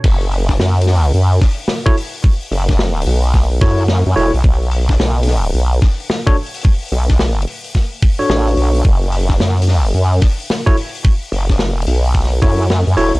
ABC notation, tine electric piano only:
X:1
M:4/4
L:1/16
Q:"Swing 16ths" 1/4=109
K:F#m
V:1 name="Tine electric piano"
z12 z [EFAc] z2 | z8 z2 [EFAc] z3 [EFAc] z | z12 z [DFAc] z2 | z8 z3 [DFAc]4- [DFAc] |
z12 z [EFAc] z2 | z8 z2 [EFAc] z3 [EFAc] z |]